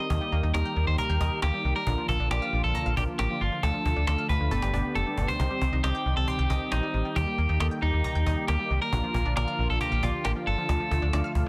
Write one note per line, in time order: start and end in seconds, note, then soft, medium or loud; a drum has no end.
0.00 1.83 D#3 medium
0.00 1.83 G3 medium
0.00 0.54 D#5 loud
0.10 0.19 D#2 loud
0.10 0.19 D#3 medium
0.10 0.49 A#3 medium
0.10 3.60 A#3 medium
0.10 0.49 D#4 medium
0.10 0.49 G4 medium
0.10 1.85 G4 medium
0.10 cajon bass loud
0.21 0.30 G3 medium
0.32 0.41 D#2 medium
0.32 0.41 A#3 medium
0.32 cajon slap soft
0.43 0.52 D#2 loud
0.43 0.52 D#4 medium
0.54 0.63 D#2 loud
0.54 0.74 A#3 medium
0.54 0.74 D#4 medium
0.54 0.74 G4 medium
0.54 0.87 A#4 loud
0.54 0.63 D#5 medium
0.54 cajon slap loud
0.65 0.74 G5 medium
0.76 0.85 D#2 loud
0.76 1.15 A#3 medium
0.76 1.15 D#4 medium
0.76 1.15 G4 medium
0.76 cajon slap soft
0.87 0.96 D#2 loud
0.87 0.98 C5 loud
0.98 1.39 A#4 loud
0.98 1.07 A#5 loud
0.98 cajon bass medium
1.10 1.18 D#2 loud
1.10 1.18 G5 medium
1.20 1.29 D#2 loud
1.20 1.50 A#3 medium
1.20 1.50 D#4 medium
1.20 1.50 G4 medium
1.20 1.29 D#5 medium
1.20 cajon bass loud
1.42 1.51 D2 loud
1.42 1.51 A#3 medium
1.42 1.75 G4 loud
1.42 cajon slap loud
1.53 1.62 G3 medium
1.53 1.83 A#3 medium
1.53 1.83 D#4 medium
1.53 1.83 G4 medium
1.64 1.73 C2 medium
1.64 1.73 D#3 medium
1.64 cajon slap soft
1.76 1.84 G3 medium
1.76 2.08 A#4 loud
1.87 1.95 A#1 loud
1.87 5.36 D3 medium
1.87 1.95 D3 medium
1.87 4.49 F3 medium
1.87 2.26 A#3 medium
1.87 2.26 D4 medium
1.87 2.26 F4 medium
1.87 4.49 F4 medium
1.87 cajon bass loud
1.98 2.06 F3 medium
2.09 2.17 A#1 loud
2.09 2.17 A#3 medium
2.09 2.30 A4 loud
2.09 cajon bass medium
2.20 2.28 A#1 loud
2.20 2.28 D4 medium
2.31 2.40 A#1 loud
2.31 2.50 A#3 medium
2.31 2.50 D4 medium
2.31 2.50 F4 medium
2.31 2.63 G4 loud
2.31 2.39 D5 loud
2.31 cajon slap loud
2.42 2.50 F5 medium
2.53 2.62 A#1 loud
2.53 2.92 A#3 medium
2.53 2.92 D4 medium
2.53 2.92 F4 medium
2.53 cajon slap soft
2.64 2.73 A#1 medium
2.64 2.97 A4 loud
2.75 2.84 A#5 loud
2.75 cajon bass medium
2.86 2.95 A#1 medium
2.86 2.94 F5 medium
2.97 3.06 A#1 loud
2.97 3.26 A#3 medium
2.97 3.26 D4 medium
2.97 3.26 F4 medium
2.97 3.03 G4 medium
2.97 3.06 D5 medium
2.97 cajon bass loud
3.19 3.28 A1 medium
3.19 3.28 A#3 medium
3.19 3.42 G4 loud
3.19 cajon slap loud
3.30 3.39 F3 medium
3.30 3.59 A#3 medium
3.30 3.59 D4 medium
3.30 3.59 F4 medium
3.41 3.50 G1 medium
3.41 3.50 D3 medium
3.41 3.64 F4 medium
3.41 cajon slap soft
3.52 3.61 F3 medium
3.63 3.72 D2 loud
3.63 3.72 D3 loud
3.63 4.02 A3 medium
3.63 5.38 A3 medium
3.63 4.02 D4 medium
3.63 4.02 F4 medium
3.63 4.06 A4 loud
3.63 cajon bass loud
3.74 3.83 F3 medium
3.85 3.94 D2 loud
3.85 3.94 A3 medium
3.85 cajon bass loud
3.96 4.05 D2 loud
3.96 4.05 D4 medium
4.07 4.16 D2 loud
4.07 4.27 A3 medium
4.07 4.27 D4 medium
4.07 4.27 F4 medium
4.07 4.28 A4 loud
4.07 4.16 D5 medium
4.07 cajon slap loud
4.18 4.27 F5 medium
4.29 4.38 D2 loud
4.29 4.51 A3 medium
4.29 4.50 D4 medium
4.29 4.51 F4 medium
4.29 5.14 B4 loud
4.29 cajon bass loud
4.40 4.49 D2 loud
4.51 4.60 G1 loud
4.51 4.71 B3 medium
4.51 5.39 B3 medium
4.51 4.71 D4 medium
4.51 4.71 G4 medium
4.51 5.38 G4 medium
4.51 4.60 A4 loud
4.51 cajon bass medium
4.62 4.71 G1 loud
4.62 4.71 G4 medium
4.62 cajon slap loud
4.73 4.82 G1 medium
4.73 5.03 B3 medium
4.73 5.03 D4 medium
4.73 4.82 D4 medium
4.73 5.03 G4 medium
4.73 cajon bass loud
4.95 5.04 F1 loud
4.95 5.04 A3 medium
4.95 5.30 A4 loud
4.95 cajon slap medium
5.07 5.15 G3 medium
5.07 5.36 B3 medium
5.07 5.36 D4 medium
5.07 5.36 G4 loud
5.18 5.26 G1 medium
5.18 5.26 D3 medium
5.18 cajon bass loud
5.28 5.37 G3 medium
5.28 5.83 C5 loud
5.28 cajon bass loud
5.39 5.48 C2 loud
5.39 7.14 D#3 medium
5.39 5.48 D#3 loud
5.39 8.89 G3 medium
5.39 5.79 C4 medium
5.39 7.14 C4 medium
5.39 5.79 D#4 medium
5.39 5.79 G4 medium
5.39 8.89 G4 medium
5.39 cajon bass loud
5.51 5.59 G3 medium
5.61 5.70 C2 loud
5.61 5.70 C4 medium
5.61 cajon bass medium
5.73 5.81 C2 loud
5.73 5.81 D#4 medium
5.84 5.92 C2 loud
5.84 6.03 C4 medium
5.84 6.03 D#4 medium
5.84 6.03 G4 medium
5.84 6.16 G4 loud
5.84 5.92 D#5 medium
5.84 cajon slap loud
5.95 6.03 G5 medium
6.06 6.14 C2 loud
6.06 6.45 C4 medium
6.06 6.45 D#4 medium
6.06 6.45 G4 medium
6.06 cajon slap soft
6.17 6.25 C2 loud
6.17 6.28 A4 loud
6.28 6.72 G4 loud
6.28 6.36 C6 loud
6.28 cajon bass medium
6.39 6.47 C2 loud
6.39 6.47 G5 medium
6.50 6.59 C2 loud
6.50 6.79 C4 medium
6.50 6.79 D#4 medium
6.50 6.79 G4 medium
6.50 6.58 D#5 medium
6.50 cajon bass loud
6.72 6.81 A#1 medium
6.72 6.80 C4 medium
6.72 7.17 D#4 medium
6.72 cajon slap loud
6.83 6.92 G3 medium
6.83 7.12 C4 medium
6.83 7.12 D#4 medium
6.83 7.12 G4 medium
6.94 7.03 A1 medium
6.94 7.03 D#3 medium
6.94 cajon slap soft
7.05 7.14 G3 medium
7.16 7.25 D#2 loud
7.16 7.25 D#3 loud
7.16 8.91 D#3 medium
7.16 7.55 A#3 medium
7.16 10.66 A#3 medium
7.16 7.55 D#4 medium
7.16 7.55 G4 medium
7.16 7.59 G4 loud
7.16 cajon bass loud
7.27 7.36 G3 medium
7.38 7.47 D#2 loud
7.38 7.47 A#3 medium
7.38 cajon slap soft
7.49 7.58 D#2 loud
7.49 7.58 D#4 medium
7.60 7.69 D#2 loud
7.60 7.80 A#3 medium
7.60 7.80 D#4 medium
7.60 7.66 G4 loud
7.60 7.80 A4 medium
7.60 7.69 D#5 medium
7.60 cajon slap loud
7.71 7.80 G5 medium
7.82 7.91 D#2 loud
7.82 8.21 A#3 medium
7.82 8.21 D#4 medium
7.82 8.45 D#4 loud
7.82 8.21 G4 medium
7.82 cajon slap soft
7.93 8.02 D#2 loud
8.04 8.13 A#5 loud
8.04 cajon bass medium
8.15 8.24 D#2 loud
8.15 8.24 G5 medium
8.26 8.35 D#2 loud
8.26 8.56 A#3 medium
8.26 8.56 D#4 medium
8.26 8.56 G4 medium
8.26 8.35 D#5 medium
8.26 cajon bass loud
8.48 8.57 D2 loud
8.48 8.57 A#3 medium
8.48 8.81 G4 loud
8.48 cajon slap loud
8.59 8.68 G3 medium
8.59 8.89 A#3 medium
8.59 8.89 D#4 medium
8.59 8.89 G4 medium
8.70 8.79 C2 medium
8.70 8.79 D#3 medium
8.70 cajon slap soft
8.81 8.90 G3 medium
8.81 9.33 A#4 loud
8.92 9.01 A#1 loud
8.92 9.01 D3 loud
8.92 11.49 D3 medium
8.92 10.67 F3 medium
8.92 9.32 A#3 medium
8.92 9.32 D4 medium
8.92 9.32 F4 medium
8.92 11.49 F4 medium
8.92 cajon bass loud
9.04 9.12 F3 medium
9.14 9.23 A#1 loud
9.14 9.23 A#3 medium
9.14 cajon bass loud
9.26 9.34 A#1 loud
9.26 9.34 D4 medium
9.37 9.45 A#1 loud
9.37 9.56 A#3 medium
9.37 9.56 D4 medium
9.37 9.56 F4 medium
9.37 9.70 A#4 loud
9.37 9.45 D5 medium
9.37 cajon slap loud
9.48 9.56 F5 medium
9.59 9.67 A#1 loud
9.59 9.98 A#3 medium
9.59 9.98 D4 medium
9.59 9.98 F4 medium
9.59 cajon slap soft
9.70 9.78 A#1 loud
9.70 9.81 A4 loud
9.81 10.04 G4 loud
9.81 9.89 A#5 loud
9.81 cajon bass medium
9.92 10.00 A#1 medium
9.92 10.00 F5 medium
10.03 10.12 A#1 loud
10.03 10.32 A#3 medium
10.03 10.32 D4 medium
10.03 10.26 F4 medium
10.03 10.32 G4 medium
10.03 10.11 D5 medium
10.03 cajon bass loud
10.25 10.34 A1 medium
10.25 10.33 A#3 medium
10.25 10.31 G4 medium
10.25 cajon slap loud
10.36 10.44 F3 medium
10.36 10.65 A#3 medium
10.36 10.65 D4 medium
10.36 10.65 F4 medium
10.47 10.56 G1 medium
10.47 10.56 D3 medium
10.47 11.31 A4 medium
10.47 cajon slap soft
10.58 10.67 F3 medium
10.69 10.78 D2 loud
10.69 10.78 D3 loud
10.69 11.49 F3 medium
10.69 11.08 A3 medium
10.69 11.49 A3 medium
10.69 11.08 D4 medium
10.69 11.08 F4 medium
10.69 cajon bass loud
10.80 10.89 F3 medium
10.91 11.00 D2 loud
10.91 11.00 A3 medium
10.91 cajon bass loud
11.02 11.11 D2 loud
11.02 11.11 D4 medium
11.13 11.22 D2 loud
11.13 11.33 A3 medium
11.13 11.33 D4 medium
11.13 11.33 F4 loud
11.13 11.22 D5 medium
11.13 cajon slap loud
11.24 11.33 F5 medium
11.35 11.44 D2 loud
11.35 11.49 A3 medium
11.35 11.49 D4 medium
11.35 11.49 F4 loud
11.35 cajon bass medium